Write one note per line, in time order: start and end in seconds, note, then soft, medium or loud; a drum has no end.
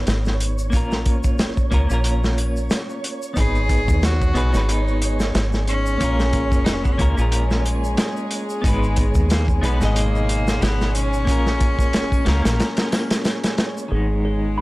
0.00 0.68 B3 medium
0.00 0.69 D#4 medium
0.00 0.71 G#4 medium
0.00 0.72 B4 medium
0.00 13.93 C#5 medium
0.07 0.73 G#1 medium
0.07 snare medium
0.07 closed hi-hat medium
0.07 shaker medium
0.25 snare soft
0.25 shaker soft
0.40 closed hi-hat medium
0.58 shaker medium
0.70 1.25 A#1 medium
0.70 1.67 A#3 medium
0.70 1.68 C#4 medium
0.70 kick loud
0.70 closed hi-hat medium
0.70 shaker medium
0.74 1.69 F4 medium
0.74 1.70 A#4 medium
0.91 snare soft
0.91 shaker soft
1.06 kick medium
1.06 closed hi-hat medium
1.23 1.69 F1 medium
1.23 kick medium
1.23 shaker medium
1.39 snare loud
1.39 closed hi-hat medium
1.39 shaker medium
1.57 kick medium
1.57 shaker soft
1.71 1.88 C#2 medium
1.71 1.85 A#3 medium
1.71 1.86 C#4 medium
1.71 1.86 F4 medium
1.71 1.87 A#4 medium
1.71 kick medium
1.71 closed hi-hat medium
1.87 2.68 A#1 medium
1.87 3.32 A#3 medium
1.87 3.33 C#4 medium
1.87 shaker medium
1.91 3.34 F4 medium
1.91 3.35 A#4 medium
2.04 closed hi-hat medium
2.04 shaker medium
2.24 snare soft
2.24 shaker soft
2.38 closed hi-hat medium
2.38 triangle medium
2.57 shaker medium
2.70 snare loud
2.70 closed hi-hat medium
2.70 shaker medium
2.89 shaker soft
3.04 closed hi-hat medium
3.22 shaker medium
3.34 3.90 G#1 loud
3.34 13.90 G#3 medium
3.34 4.31 B3 medium
3.34 4.32 D#4 medium
3.34 13.90 G#4 medium
3.34 kick loud
3.34 closed hi-hat medium
3.34 shaker medium
3.38 4.33 G#4 medium
3.38 4.06 G#4 loud
3.38 4.34 B4 medium
3.55 shaker soft
3.69 kick medium
3.69 closed hi-hat medium
3.88 4.33 D#2 medium
3.88 kick loud
3.88 shaker medium
4.03 4.72 F#4 medium
4.03 snare loud
4.03 closed hi-hat medium
4.03 shaker medium
4.21 kick medium
4.21 shaker soft
4.34 4.52 B1 loud
4.34 4.49 B3 medium
4.34 4.50 D#4 medium
4.34 4.50 G#4 medium
4.34 4.51 B4 medium
4.34 kick medium
4.34 closed hi-hat medium
4.51 5.32 G#1 medium
4.51 5.95 B3 medium
4.51 5.96 D#4 medium
4.51 snare soft
4.51 shaker medium
4.55 5.97 G#4 medium
4.55 5.99 B4 medium
4.69 5.36 D#4 medium
4.69 closed hi-hat medium
4.69 shaker medium
4.88 shaker soft
5.02 closed hi-hat medium
5.20 snare soft
5.20 shaker medium
5.35 5.98 G#1 medium
5.35 snare loud
5.35 closed hi-hat medium
5.35 shaker medium
5.53 snare soft
5.53 shaker soft
5.67 6.66 C#4 loud
5.67 closed hi-hat medium
5.86 shaker medium
5.98 6.52 A#1 medium
5.98 6.95 A#3 medium
5.98 6.96 C#4 medium
5.98 kick medium
5.98 closed hi-hat medium
5.98 shaker medium
6.02 6.97 F4 medium
6.02 6.98 A#4 medium
6.20 snare soft
6.20 shaker soft
6.33 kick medium
6.33 closed hi-hat medium
6.52 6.97 F1 medium
6.52 kick medium
6.52 shaker medium
6.65 6.75 D#4 medium
6.65 snare loud
6.65 closed hi-hat medium
6.65 shaker medium
6.73 6.86 C#4 loud
6.84 6.94 B3 medium
6.84 kick medium
6.84 shaker soft
6.92 7.00 C#4 medium
6.98 7.16 C#2 loud
6.98 7.13 A#3 medium
6.98 7.13 C#4 medium
6.98 7.14 F4 medium
6.98 7.14 A#4 loud
6.98 kick medium
6.98 closed hi-hat medium
7.15 7.96 A#1 medium
7.15 8.59 A#3 medium
7.15 8.61 C#4 medium
7.15 shaker medium
7.19 8.62 F4 medium
7.19 8.63 A#4 medium
7.32 closed hi-hat medium
7.32 shaker medium
7.51 snare soft
7.51 shaker soft
7.66 closed hi-hat medium
7.66 triangle medium
7.84 shaker medium
7.97 snare loud
7.97 closed hi-hat medium
7.97 shaker medium
8.17 shaker soft
8.31 closed hi-hat medium
8.49 shaker medium
8.62 9.17 G#1 medium
8.62 9.27 G#3 medium
8.62 9.58 B3 medium
8.62 9.59 D#4 medium
8.62 kick loud
8.62 closed hi-hat medium
8.62 shaker medium
8.66 9.61 G#4 medium
8.66 9.62 B4 medium
8.83 shaker soft
8.96 kick medium
8.96 closed hi-hat medium
9.15 9.60 D#2 medium
9.15 kick medium
9.15 shaker medium
9.30 9.45 A#3 medium
9.30 snare loud
9.30 closed hi-hat medium
9.30 shaker medium
9.48 kick medium
9.48 shaker soft
9.61 9.79 B1 loud
9.61 9.76 B3 medium
9.61 9.97 B3 loud
9.61 9.77 D#4 medium
9.61 9.77 G#4 medium
9.61 9.78 B4 loud
9.61 kick medium
9.61 closed hi-hat medium
9.78 10.59 G#1 loud
9.78 11.23 B2 medium
9.78 11.24 D#4 medium
9.78 snare soft
9.78 shaker medium
9.83 11.25 G#4 medium
9.83 11.26 D#5 medium
9.96 10.63 A#3 loud
9.96 closed hi-hat medium
9.96 shaker medium
10.15 shaker soft
10.29 closed hi-hat medium
10.48 snare soft
10.48 shaker medium
10.61 11.27 G#1 medium
10.61 10.96 B3 loud
10.61 snare loud
10.61 closed hi-hat medium
10.61 shaker medium
10.81 snare soft
10.81 shaker soft
10.94 13.26 C#4 loud
10.94 closed hi-hat medium
11.13 shaker medium
11.25 11.79 A#1 medium
11.25 12.22 A#3 medium
11.25 12.23 C#4 medium
11.25 kick loud
11.25 closed hi-hat medium
11.25 shaker medium
11.29 12.24 F4 medium
11.29 12.25 A#4 medium
11.46 snare soft
11.46 shaker soft
11.60 kick medium
11.60 closed hi-hat medium
11.79 12.24 F1 medium
11.79 kick loud
11.79 shaker medium
11.93 snare loud
11.93 closed hi-hat medium
11.93 shaker medium
12.12 kick medium
12.12 triangle medium
12.12 shaker soft
12.25 12.43 C#2 loud
12.25 12.40 A#3 medium
12.25 12.41 C#4 medium
12.25 12.41 F4 medium
12.25 12.42 A#4 loud
12.25 snare medium
12.25 closed hi-hat medium
12.42 12.60 A#1 loud
12.42 13.87 A#3 medium
12.42 13.88 C#4 medium
12.42 snare medium
12.42 closed hi-hat medium
12.42 shaker medium
12.46 13.89 F4 medium
12.46 13.90 A#4 medium
12.60 snare loud
12.60 closed hi-hat medium
12.60 shaker medium
12.77 snare loud
12.77 closed hi-hat medium
12.77 shaker soft
12.92 snare loud
12.92 closed hi-hat medium
12.92 triangle medium
13.11 snare loud
13.11 closed hi-hat medium
13.11 shaker medium
13.25 snare loud
13.25 closed hi-hat medium
13.25 shaker medium
13.44 snare medium
13.44 closed hi-hat medium
13.44 shaker soft
13.58 snare loud
13.58 closed hi-hat medium
13.77 shaker medium
13.88 14.61 G#1 medium
13.88 14.61 D#3 medium
13.88 14.61 G#3 medium
13.88 14.61 G#4 medium
13.88 14.02 G#4 medium
13.88 closed hi-hat medium
13.93 14.61 G#3 medium
13.93 14.61 B3 medium
13.93 14.61 D#4 medium
14.25 14.56 G#4 medium
14.25 closed hi-hat medium
14.58 14.61 B5 medium
14.58 closed hi-hat medium